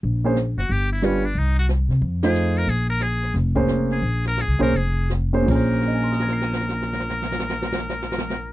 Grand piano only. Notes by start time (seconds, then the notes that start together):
0.24 A#3 C#4 G#4 C5
1.02 G3 D4 F4 B4
2.23 A3 D#4 F4 C5
3.55 A#3 C#4 G#4 C5
4.59 A#3 C#4 G#4 C5
5.33 A#3 C#4 G#4 C5
5.43 A#2 A#3
5.49 C#4 G#4
5.55 C5
5.87 D#5
5.95 G#5
6.03 C6
6.12 D#6
6.22 G#6
6.33 C7
6.44 D#7